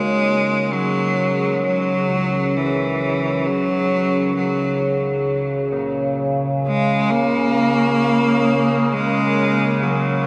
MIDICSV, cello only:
0, 0, Header, 1, 2, 480
1, 0, Start_track
1, 0, Key_signature, -6, "minor"
1, 0, Tempo, 909091
1, 867, Time_signature, 4, 2, 24, 8
1, 5421, End_track
2, 0, Start_track
2, 0, Title_t, "Cello"
2, 0, Program_c, 0, 42
2, 0, Note_on_c, 0, 56, 102
2, 383, Note_on_c, 0, 54, 93
2, 391, Note_off_c, 0, 56, 0
2, 865, Note_off_c, 0, 54, 0
2, 879, Note_on_c, 0, 54, 96
2, 1357, Note_on_c, 0, 52, 88
2, 1365, Note_off_c, 0, 54, 0
2, 1832, Note_on_c, 0, 54, 93
2, 1840, Note_off_c, 0, 52, 0
2, 2305, Note_off_c, 0, 54, 0
2, 2308, Note_on_c, 0, 54, 76
2, 2646, Note_off_c, 0, 54, 0
2, 3524, Note_on_c, 0, 56, 95
2, 3749, Note_on_c, 0, 58, 120
2, 3757, Note_off_c, 0, 56, 0
2, 4710, Note_on_c, 0, 56, 104
2, 4718, Note_off_c, 0, 58, 0
2, 5187, Note_on_c, 0, 54, 84
2, 5195, Note_off_c, 0, 56, 0
2, 5421, Note_off_c, 0, 54, 0
2, 5421, End_track
0, 0, End_of_file